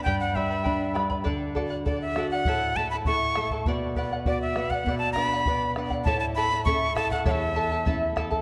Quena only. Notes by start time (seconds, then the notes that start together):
0.03 G5
0.20 F#5
0.35 E5
1.86 D5
2.01 E5
2.31 F#5
2.76 A5
2.90 B5
3.06 C#6
4.27 D5
4.42 E5
4.70 F#5
4.98 A5
5.12 B5
6.04 A5
6.20 A5
6.35 B5
6.65 C#6
6.96 A5
7.11 F#5
7.27 F#5
7.31 E5